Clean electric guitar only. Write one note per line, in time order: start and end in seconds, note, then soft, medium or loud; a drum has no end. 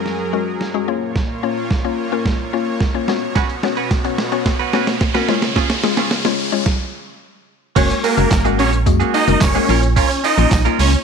3.35 3.53 C#4 medium
3.35 3.49 F#4 medium
3.35 3.48 B4 loud
3.49 muted clean electric guitar stroke soft
3.63 muted clean electric guitar stroke soft
3.77 3.90 C#4 medium
3.77 3.90 F#4 medium
3.77 3.91 B4 medium
4.05 muted clean electric guitar stroke soft
4.32 muted clean electric guitar stroke soft
4.46 muted clean electric guitar stroke soft
4.59 4.72 C#4 soft
4.59 4.73 F#4 medium
4.59 4.73 B4 medium
4.73 4.91 C#4 medium
4.73 4.87 F#4 medium
4.73 4.86 B4 loud
4.87 muted clean electric guitar stroke soft
5.01 muted clean electric guitar stroke soft
5.14 5.27 C#4 medium
5.14 5.29 F#4 medium
5.14 5.32 B4 medium
5.28 5.42 C#4 medium
5.28 5.42 F4 medium
5.28 5.41 G#4 medium
5.56 5.73 C#4 medium
5.56 5.70 F4 medium
5.56 5.68 G#4 loud
5.70 muted clean electric guitar stroke medium
5.84 muted clean electric guitar stroke soft
5.97 6.10 C#4 medium
5.97 6.11 F4 medium
5.97 6.11 G#4 medium
6.11 muted clean electric guitar stroke soft
6.25 muted clean electric guitar stroke soft
6.52 muted clean electric guitar stroke soft
7.76 7.94 A#3 medium
7.76 7.90 F#4 medium
7.76 7.89 G#4 medium
7.90 muted clean electric guitar stroke medium
8.03 8.17 A#3 medium
8.03 8.17 F#4 medium
8.03 8.16 G#4 medium
8.17 8.30 A#3 medium
8.17 8.31 F#4 medium
8.17 8.31 G#4 medium
8.31 muted clean electric guitar stroke soft
8.45 8.57 A#3 medium
8.45 8.58 F#4 medium
8.45 8.59 G#4 medium
8.58 8.76 A#3 medium
8.58 8.72 F#4 medium
8.58 8.71 G#4 loud
8.72 muted clean electric guitar stroke medium
8.86 muted clean electric guitar stroke soft
9.00 9.12 A#3 medium
9.00 9.13 F#4 medium
9.00 9.14 G#4 medium
9.13 9.31 A#3 medium
9.13 9.27 F#4 medium
9.13 9.26 G#4 medium
9.41 muted clean electric guitar stroke soft
9.55 9.70 A#3 medium
9.55 9.68 F#4 medium
9.55 9.69 G#4 medium
9.68 9.86 C#4 medium
9.68 9.83 F4 loud
9.68 9.81 A#4 loud
9.83 muted clean electric guitar stroke medium
9.96 10.14 C#4 loud
9.96 10.10 F4 loud
9.96 10.09 A#4 loud
10.10 muted clean electric guitar stroke soft
10.24 10.38 C#4 medium
10.24 10.37 F4 medium
10.24 10.36 A#4 medium
10.37 10.50 C#4 medium
10.37 10.51 F4 medium
10.37 10.51 A#4 medium
10.65 10.77 C#4 medium
10.65 10.78 F4 medium
10.65 10.79 A#4 medium
10.79 10.96 C#4 medium
10.79 10.92 F4 medium
10.79 10.91 A#4 medium
10.93 muted clean electric guitar stroke soft